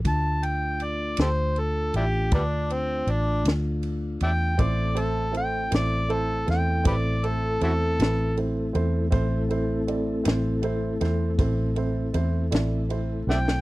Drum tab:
RD |x-x-x-x-x-x-x-x-x-x-x-x-|x-x-x-x-x-x-x-x-x-x-x-x-|x-x-x-x-x-x-x-x-x-x-x---|
SD |------o-----------o-----|------o---o-------o-----|------o---o-------o---oo|
BD |o-----------o-----------|o-----------o-----------|o-----------o-----------|